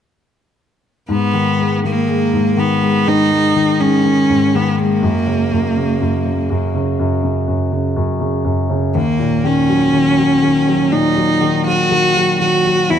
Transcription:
1.08 2.32 G#2 soft
1.08 1.79 B3 medium
1.33 1.82 D#3 soft
1.59 2.06 G#3 soft
1.84 2.55 D#3 soft
1.84 2.60 A#3 medium
2.08 2.80 G#3 soft
2.33 4.25 G#2 soft
2.57 3.05 D#3 soft
2.57 3.10 B3 medium
2.82 3.30 G#3 soft
3.07 3.54 D#3 soft
3.07 3.82 D#4 medium
3.31 3.78 G#3 soft
3.55 4.03 D#3 soft
3.80 4.76 G#3 soft
3.80 4.57 C#4 medium
4.04 4.53 D#3 soft
4.30 5.01 G#2 soft
4.54 5.01 D#3 soft
4.54 4.81 B3 medium
4.78 5.02 G#3 soft
4.78 6.75 A#3 medium
5.02 5.50 F#2 soft
5.27 5.75 C#3 soft
5.52 5.99 F#2 soft
5.76 6.24 C#3 soft
6.01 6.48 F#2 soft
6.26 6.73 C#3 soft
6.50 6.98 F#2 soft
6.74 7.22 C#3 soft
6.99 7.46 F#2 soft
7.23 7.70 C#3 soft
7.48 7.95 F#2 soft
7.72 8.19 C#3 soft
7.96 8.43 F#2 soft
8.20 8.68 C#3 soft
8.45 8.93 F#2 soft
8.70 8.94 C#3 soft
8.95 12.85 D#2 soft
8.95 9.47 A#3 medium
9.19 10.90 A#2 soft
9.44 9.92 D#3 soft
9.44 10.94 C#4 medium
9.68 10.17 F#3 soft
9.94 10.41 D#3 soft
10.18 10.66 F#3 soft
10.42 11.40 D#3 soft
10.67 11.15 F#3 soft
10.92 12.85 A#2 soft
10.92 11.66 D#4 medium
11.16 11.64 F#3 soft
11.41 11.89 D#3 soft
11.66 12.14 F#3 soft
11.66 12.36 F#4 medium
11.91 12.39 D#3 soft
12.15 12.64 F#3 soft
12.40 12.88 D#3 soft
12.40 12.92 F#4 medium
12.65 12.89 F#3 soft
12.89 12.99 E2 soft
12.89 12.99 E4 medium

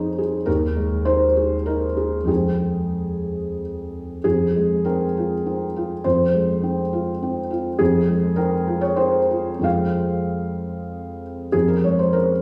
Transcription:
0.00 0.43 F2 soft
0.00 0.49 C#4 soft
0.00 0.49 D#4 soft
0.00 0.18 G#4 soft
0.00 0.18 C5 medium
0.18 0.47 G#4 soft
0.46 2.25 D#2 medium
0.46 1.05 A#4 medium
0.76 1.24 G#3 soft
1.05 1.53 D#4 soft
1.05 1.66 C5 medium
1.36 1.85 G#4 soft
1.66 2.17 D#4 soft
1.66 2.29 A#4 medium
1.97 2.26 G#4 soft
2.24 4.18 F2 soft
2.24 4.18 G#3 soft
2.24 4.19 C4 soft
2.24 3.60 G#4 soft
4.24 6.01 F2 soft
4.24 4.85 G#4 medium
4.56 5.04 G#3 soft
4.85 5.34 C4 soft
4.85 6.04 A#4 medium
5.17 5.64 F4 soft
5.46 5.93 C4 soft
5.76 6.22 F4 soft
6.04 7.76 F2 soft
6.04 7.50 C5 medium
6.35 6.81 G#3 soft
6.63 7.09 C4 soft
6.93 7.39 F4 soft
7.23 7.69 C4 soft
7.51 7.97 F4 soft
7.79 9.58 F2 medium
7.79 8.37 G#4 medium
8.08 8.54 G#3 soft
8.36 8.85 C4 soft
8.36 8.81 A#4 medium
8.67 9.17 F4 soft
8.81 8.97 C#5 medium
8.96 9.51 C4 soft
8.96 9.64 C5 medium
9.31 9.62 F4 soft
9.59 11.47 F2 soft
9.59 11.48 G#3 soft
9.59 11.48 C4 soft
9.63 11.49 F4 soft
9.63 11.22 F5 medium
11.52 12.42 F2 soft
11.52 11.68 G#4 medium
11.68 11.83 A#4 medium
11.84 12.32 G#3 soft
11.84 11.99 C#5 medium
11.99 12.14 C5 medium
12.13 12.42 C#4 soft
12.13 12.42 A#4 medium

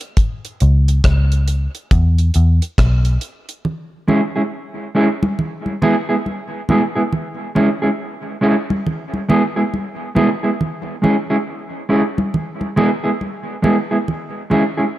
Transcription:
0.01 closed hi-hat soft
0.17 kick loud
0.17 closed hi-hat medium
0.45 closed hi-hat medium
0.60 0.99 C#2 medium
0.60 closed hi-hat medium
0.88 closed hi-hat medium
1.04 1.66 C#2 medium
1.04 kick loud
1.04 cross-stick loud
1.04 closed hi-hat medium
1.32 closed hi-hat soft
1.48 closed hi-hat medium
1.75 closed hi-hat soft
1.91 2.29 E2 loud
1.91 kick loud
1.91 closed hi-hat medium
2.18 closed hi-hat soft
2.34 2.59 E2 medium
2.34 closed hi-hat medium
2.62 closed hi-hat medium
2.78 3.16 B1 medium
2.78 kick loud
2.78 cross-stick loud
2.78 closed hi-hat medium
3.05 closed hi-hat soft
3.21 closed hi-hat medium
3.49 closed hi-hat soft
3.65 low conga medium
4.08 4.20 G#3 medium
4.08 4.20 C#4 medium
4.08 4.20 E4 medium
4.08 4.21 G#4 medium
4.08 low conga medium
4.36 4.42 G#3 soft
4.36 4.42 C#4 medium
4.36 4.41 E4 medium
4.36 4.41 G#4 medium
4.95 5.07 G#3 medium
4.95 5.07 C#4 medium
4.95 5.08 E4 medium
4.95 5.08 G#4 medium
5.23 high conga medium
5.39 low conga medium
5.66 high conga medium
5.82 5.94 G#3 medium
5.82 5.94 B3 medium
5.82 5.95 E4 medium
5.82 5.95 G#4 medium
5.82 low conga medium
6.09 6.15 G#3 soft
6.09 6.15 B3 medium
6.09 6.15 E4 medium
6.09 6.15 G#4 medium
6.26 high conga soft
6.69 6.81 G#3 medium
6.69 6.81 B3 medium
6.69 6.81 E4 medium
6.69 6.82 G#4 medium
6.69 high conga medium
6.69 low conga medium
6.96 7.02 G#3 soft
6.96 7.02 B3 medium
6.96 7.02 E4 medium
6.96 7.01 G#4 medium
7.13 low conga medium
7.55 7.67 G#3 medium
7.55 7.68 C#4 medium
7.55 7.68 E4 medium
7.55 7.68 G#4 medium
7.55 low conga medium
7.82 7.89 G#3 medium
7.82 7.89 C#4 medium
7.82 7.89 E4 medium
7.82 7.88 G#4 medium
8.41 8.54 G#3 medium
8.41 8.54 C#4 medium
8.41 8.55 E4 medium
8.41 8.55 G#4 medium
8.70 high conga medium
8.86 low conga medium
9.14 high conga medium
9.29 9.41 G#3 medium
9.29 9.41 B3 medium
9.29 9.42 E4 medium
9.29 9.42 G#4 medium
9.29 low conga medium
9.56 9.63 G#3 medium
9.56 9.62 B3 medium
9.56 9.62 E4 medium
9.56 9.62 G#4 medium
9.74 high conga soft
10.15 10.28 G#3 medium
10.15 10.28 B3 medium
10.15 10.28 E4 medium
10.15 10.29 G#4 medium
10.15 high conga medium
10.15 low conga medium
10.43 10.50 G#3 soft
10.43 10.49 B3 soft
10.43 10.49 E4 medium
10.43 10.49 G#4 medium
10.61 low conga medium
11.02 11.15 G#3 medium
11.02 11.15 C#4 medium
11.02 11.15 E4 medium
11.02 11.15 G#4 medium
11.02 low conga medium
11.30 11.37 G#3 medium
11.30 11.36 C#4 medium
11.30 11.36 E4 medium
11.30 11.36 G#4 medium
11.89 12.02 G#3 medium
11.89 12.02 C#4 medium
11.89 12.02 E4 medium
11.89 12.02 G#4 medium
12.18 high conga medium
12.34 low conga medium
12.61 high conga soft
12.76 12.89 G#3 medium
12.76 12.89 B3 medium
12.76 12.89 E4 medium
12.76 12.90 G#4 medium
12.76 low conga medium
13.04 13.10 G#3 medium
13.04 13.10 B3 medium
13.04 13.10 E4 medium
13.04 13.10 G#4 medium
13.21 high conga soft
13.62 13.75 G#3 medium
13.62 13.76 B3 medium
13.62 13.76 E4 medium
13.62 13.76 G#4 medium
13.62 high conga medium
13.62 low conga medium
13.91 13.97 G#3 soft
13.91 13.97 B3 medium
13.91 13.97 E4 medium
13.91 13.97 G#4 medium
14.08 low conga medium
14.50 14.62 G#3 medium
14.50 14.63 C#4 medium
14.50 14.63 E4 medium
14.50 14.63 G#4 medium
14.50 low conga medium
14.77 14.84 G#3 soft
14.77 14.84 C#4 medium
14.77 14.84 E4 medium
14.77 14.83 G#4 medium

